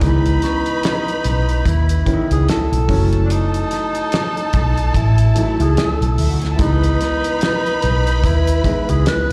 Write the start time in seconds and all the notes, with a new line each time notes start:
Already playing: E4
0.00 C#2 D#3 G#3 B3 D#4 B4 B5, kick, closed hi-hat
0.07 E3
0.26 closed hi-hat
0.42 C#4, snare, closed hi-hat
0.66 closed hi-hat
0.83 snare, closed hi-hat
1.08 closed hi-hat
1.24 B1, closed hi-hat
1.49 closed hi-hat
1.66 D#2 E4, kick, closed hi-hat
1.89 closed hi-hat
2.06 D#3 E3 B3 C#4, kick, closed hi-hat
2.14 D#4
2.31 C#2 G#4, closed hi-hat
2.49 A4, snare, closed hi-hat
2.72 B1, closed hi-hat
2.88 F#1 E3 F#3 A3 C#4 A4 A5, kick, open hi-hat
3.13 closed hi-hat
3.25 D4
3.30 D#4, closed hi-hat
3.54 closed hi-hat
3.71 snare, closed hi-hat
3.95 closed hi-hat
4.12 snare, closed hi-hat
4.37 closed hi-hat
4.53 B1, kick, closed hi-hat
4.77 closed hi-hat
4.94 A1 E4, kick, closed hi-hat
5.18 closed hi-hat
5.35 E3 F#3 A3 D#4, closed hi-hat
5.43 E4
5.60 C#2 G#4, closed hi-hat
5.77 G#4, snare, closed hi-hat
5.89 A4
6.01 B1, closed hi-hat
6.18 D2 E4 E5, open hi-hat
6.30 F#4 F#5
6.41 G#4 G#5, snare, closed hi-hat
6.50 A4 A5
6.56 C#2 E3 G#3 B3 D#4 E4 B4 B5, kick, closed hi-hat
6.61 D#4
6.83 closed hi-hat
7.01 snare, closed hi-hat
7.24 closed hi-hat
7.41 snare, closed hi-hat
7.66 closed hi-hat
7.82 B1, closed hi-hat
8.07 closed hi-hat
8.24 D#2 E4, kick, closed hi-hat
8.47 closed hi-hat
8.63 E3 G#3 B3 D#4, kick, closed hi-hat
8.89 C#2 G#4, closed hi-hat
9.06 B4, snare, closed hi-hat